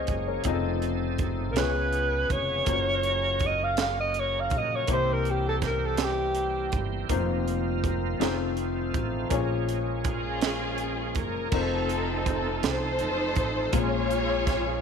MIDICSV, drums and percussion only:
0, 0, Header, 1, 2, 480
1, 0, Start_track
1, 0, Tempo, 738007
1, 295, Time_signature, 6, 3, 24, 8
1, 9635, End_track
2, 0, Start_track
2, 0, Title_t, "Drums"
2, 46, Note_on_c, 9, 42, 43
2, 53, Note_on_c, 9, 36, 73
2, 111, Note_off_c, 9, 42, 0
2, 118, Note_off_c, 9, 36, 0
2, 284, Note_on_c, 9, 42, 72
2, 292, Note_on_c, 9, 36, 80
2, 349, Note_off_c, 9, 42, 0
2, 357, Note_off_c, 9, 36, 0
2, 533, Note_on_c, 9, 42, 37
2, 598, Note_off_c, 9, 42, 0
2, 770, Note_on_c, 9, 42, 37
2, 774, Note_on_c, 9, 36, 69
2, 835, Note_off_c, 9, 42, 0
2, 839, Note_off_c, 9, 36, 0
2, 1014, Note_on_c, 9, 42, 68
2, 1020, Note_on_c, 9, 38, 88
2, 1079, Note_off_c, 9, 42, 0
2, 1085, Note_off_c, 9, 38, 0
2, 1252, Note_on_c, 9, 42, 41
2, 1317, Note_off_c, 9, 42, 0
2, 1496, Note_on_c, 9, 42, 43
2, 1497, Note_on_c, 9, 36, 73
2, 1561, Note_off_c, 9, 42, 0
2, 1562, Note_off_c, 9, 36, 0
2, 1732, Note_on_c, 9, 42, 70
2, 1735, Note_on_c, 9, 36, 82
2, 1797, Note_off_c, 9, 42, 0
2, 1800, Note_off_c, 9, 36, 0
2, 1973, Note_on_c, 9, 42, 39
2, 2038, Note_off_c, 9, 42, 0
2, 2208, Note_on_c, 9, 42, 39
2, 2215, Note_on_c, 9, 36, 73
2, 2273, Note_off_c, 9, 42, 0
2, 2280, Note_off_c, 9, 36, 0
2, 2452, Note_on_c, 9, 42, 71
2, 2458, Note_on_c, 9, 38, 86
2, 2518, Note_off_c, 9, 42, 0
2, 2523, Note_off_c, 9, 38, 0
2, 2693, Note_on_c, 9, 42, 40
2, 2758, Note_off_c, 9, 42, 0
2, 2928, Note_on_c, 9, 42, 43
2, 2936, Note_on_c, 9, 36, 79
2, 2993, Note_off_c, 9, 42, 0
2, 3001, Note_off_c, 9, 36, 0
2, 3171, Note_on_c, 9, 42, 77
2, 3176, Note_on_c, 9, 36, 83
2, 3236, Note_off_c, 9, 42, 0
2, 3241, Note_off_c, 9, 36, 0
2, 3417, Note_on_c, 9, 42, 37
2, 3482, Note_off_c, 9, 42, 0
2, 3653, Note_on_c, 9, 42, 41
2, 3655, Note_on_c, 9, 36, 79
2, 3659, Note_on_c, 9, 38, 30
2, 3718, Note_off_c, 9, 42, 0
2, 3720, Note_off_c, 9, 36, 0
2, 3724, Note_off_c, 9, 38, 0
2, 3886, Note_on_c, 9, 42, 70
2, 3892, Note_on_c, 9, 38, 89
2, 3951, Note_off_c, 9, 42, 0
2, 3957, Note_off_c, 9, 38, 0
2, 4127, Note_on_c, 9, 42, 45
2, 4192, Note_off_c, 9, 42, 0
2, 4370, Note_on_c, 9, 42, 45
2, 4376, Note_on_c, 9, 36, 79
2, 4435, Note_off_c, 9, 42, 0
2, 4441, Note_off_c, 9, 36, 0
2, 4613, Note_on_c, 9, 42, 72
2, 4615, Note_on_c, 9, 36, 81
2, 4678, Note_off_c, 9, 42, 0
2, 4680, Note_off_c, 9, 36, 0
2, 4862, Note_on_c, 9, 42, 39
2, 4927, Note_off_c, 9, 42, 0
2, 5097, Note_on_c, 9, 36, 70
2, 5101, Note_on_c, 9, 42, 38
2, 5162, Note_off_c, 9, 36, 0
2, 5166, Note_off_c, 9, 42, 0
2, 5341, Note_on_c, 9, 42, 69
2, 5346, Note_on_c, 9, 38, 91
2, 5406, Note_off_c, 9, 42, 0
2, 5412, Note_off_c, 9, 38, 0
2, 5573, Note_on_c, 9, 42, 42
2, 5638, Note_off_c, 9, 42, 0
2, 5815, Note_on_c, 9, 42, 42
2, 5817, Note_on_c, 9, 36, 74
2, 5880, Note_off_c, 9, 42, 0
2, 5882, Note_off_c, 9, 36, 0
2, 6052, Note_on_c, 9, 42, 77
2, 6055, Note_on_c, 9, 36, 87
2, 6117, Note_off_c, 9, 42, 0
2, 6120, Note_off_c, 9, 36, 0
2, 6300, Note_on_c, 9, 42, 43
2, 6365, Note_off_c, 9, 42, 0
2, 6533, Note_on_c, 9, 42, 40
2, 6535, Note_on_c, 9, 36, 73
2, 6598, Note_off_c, 9, 42, 0
2, 6600, Note_off_c, 9, 36, 0
2, 6774, Note_on_c, 9, 42, 68
2, 6780, Note_on_c, 9, 38, 94
2, 6839, Note_off_c, 9, 42, 0
2, 6845, Note_off_c, 9, 38, 0
2, 7010, Note_on_c, 9, 42, 44
2, 7075, Note_off_c, 9, 42, 0
2, 7251, Note_on_c, 9, 42, 42
2, 7256, Note_on_c, 9, 36, 74
2, 7316, Note_off_c, 9, 42, 0
2, 7321, Note_off_c, 9, 36, 0
2, 7490, Note_on_c, 9, 49, 81
2, 7494, Note_on_c, 9, 36, 83
2, 7555, Note_off_c, 9, 49, 0
2, 7559, Note_off_c, 9, 36, 0
2, 7736, Note_on_c, 9, 42, 42
2, 7801, Note_off_c, 9, 42, 0
2, 7975, Note_on_c, 9, 36, 82
2, 7976, Note_on_c, 9, 42, 42
2, 8040, Note_off_c, 9, 36, 0
2, 8041, Note_off_c, 9, 42, 0
2, 8215, Note_on_c, 9, 42, 74
2, 8221, Note_on_c, 9, 38, 95
2, 8280, Note_off_c, 9, 42, 0
2, 8286, Note_off_c, 9, 38, 0
2, 8447, Note_on_c, 9, 42, 44
2, 8512, Note_off_c, 9, 42, 0
2, 8686, Note_on_c, 9, 42, 45
2, 8692, Note_on_c, 9, 36, 81
2, 8751, Note_off_c, 9, 42, 0
2, 8758, Note_off_c, 9, 36, 0
2, 8928, Note_on_c, 9, 42, 79
2, 8931, Note_on_c, 9, 36, 86
2, 8993, Note_off_c, 9, 42, 0
2, 8996, Note_off_c, 9, 36, 0
2, 9174, Note_on_c, 9, 42, 41
2, 9239, Note_off_c, 9, 42, 0
2, 9411, Note_on_c, 9, 36, 80
2, 9412, Note_on_c, 9, 42, 44
2, 9418, Note_on_c, 9, 38, 29
2, 9476, Note_off_c, 9, 36, 0
2, 9477, Note_off_c, 9, 42, 0
2, 9483, Note_off_c, 9, 38, 0
2, 9635, End_track
0, 0, End_of_file